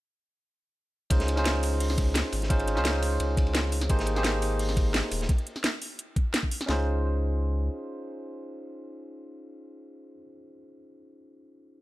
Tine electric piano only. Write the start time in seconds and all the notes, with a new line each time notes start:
1.10 C#4 D#4 F4 G#4 C5
1.36 C#4 D#4 F4 G#4 C5
2.49 C#4 D#4 F4 G#4 C5
2.75 C#4 D#4 F4 G#4 C5
3.89 A#3 D#4 G4 G#4 C5
4.15 A#3 D#4 G4 G#4 C5
6.66 C#4 D#4 F4 G#4
6.71 C5